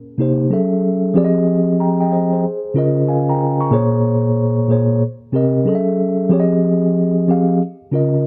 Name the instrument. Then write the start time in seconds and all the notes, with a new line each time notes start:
tine electric piano
0.18 C3 A#3 D#4 G4 C5
0.50 F#3 C#4 G#4 A4 E5
1.14 F3 C4 G4 G#4 D5
1.25 D#5
1.80 G5 A#5
2.01 D#5 G5
2.12 C5 D#5
2.33 G#4 C5
2.74 C#3 C#4 F4 A#4
2.78 D#5
3.08 F5 G#5
3.29 G5 A#5
3.61 A#5 C#6
3.71 A#2 A#3 G#4 C5 C#5
4.68 A#2 A#3 G#4 C5 C#5
5.32 C3 C4 G4 A#4 D#5
5.65 F#3 C#4 G#4 A4 D#5
5.75 E5
6.29 F3 C4 G4 G#4 C#5
6.40 D#5
7.28 F3 C4 G4 G#4 F5
7.92 C#3 C#4 F4 A#4 D#5